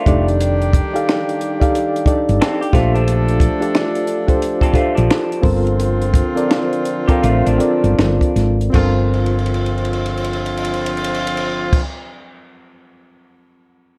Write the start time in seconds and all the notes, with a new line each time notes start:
Already playing: A3 F4
0.06 F1 D#3 G3 D4 D#4 G4 A4 D5, kick, closed hi-hat
0.28 closed hi-hat
0.41 closed hi-hat
0.62 closed hi-hat
0.73 kick, closed hi-hat
0.94 D#4 G4 A4 D5 F5, closed hi-hat
1.09 finger snap, snare
1.29 closed hi-hat
1.41 closed hi-hat
1.60 D#4 G4 A4 D5 F5, kick, closed hi-hat
1.75 closed hi-hat
1.96 closed hi-hat
2.05 D4 D#4 G4 A4 D5, muted fretless electric bass stroke, kick, closed hi-hat
2.29 G1, closed hi-hat
2.41 C4 A4, finger snap, snare
2.61 G4, closed hi-hat
2.72 A#1 F3 A3 D4 F4 G4 A4 C5, kick, closed hi-hat
2.76 snare
2.95 F3 D4, closed hi-hat
3.08 closed hi-hat
3.28 closed hi-hat
3.40 kick, closed hi-hat
3.60 D4 F4 G4 A4 D5, closed hi-hat
3.75 finger snap, snare
3.95 closed hi-hat
4.07 closed hi-hat
4.27 D4 F4 G4 A4 C5, kick, closed hi-hat
4.42 closed hi-hat
4.61 C4 A4, kick, closed hi-hat
4.73 A3 D4 F4 G4 A4 C5, muted fretless electric bass stroke, kick, closed hi-hat
4.95 A#1 F3 D4, closed hi-hat
5.11 finger snap, snare
5.32 closed hi-hat
5.41 G1 D3 F3 C4 F4 A4 A#4 C5, kick, open hi-hat
5.67 closed hi-hat
5.80 closed hi-hat
6.02 closed hi-hat
6.14 kick, closed hi-hat
6.35 C4 F4 A4 A#4 D5, closed hi-hat
6.51 finger snap, snare
6.73 closed hi-hat
6.85 closed hi-hat
7.08 A#3 C4 F4 G4 A4 A#4 C5, kick, closed hi-hat
7.23 A1 A3 F4, closed hi-hat
7.46 A1 F3 D4, closed hi-hat
7.58 C4 F4 A4 A#4 D5, closed hi-hat
7.84 G1, closed hi-hat
7.98 G1, finger snap, snare
8.21 kick, closed hi-hat
8.36 G#1, snare, closed hi-hat
8.61 closed hi-hat
8.70 D3 F3 C4 F4, kick
8.74 G1 A4 A#4, crash
8.79 C5
9.13 crash
9.26 ride
9.39 crash
9.46 ride
9.54 crash
9.66 ride
9.78 crash
9.85 ride
9.93 crash
10.06 ride
10.17 crash
10.24 ride
10.33 crash
10.46 ride
10.57 crash
10.65 ride
10.74 crash
10.86 ride
10.97 crash
11.04 ride
11.14 crash
11.27 ride
11.37 crash
11.73 kick, crash